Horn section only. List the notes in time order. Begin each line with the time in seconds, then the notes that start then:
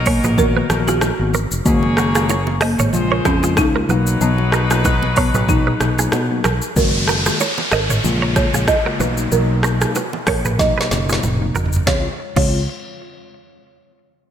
Already playing: F#3 D#4 A#4
1.66 A#3 G#4 C#5
2.94 G#3 F4 C5
3.89 F#3 D#4 B4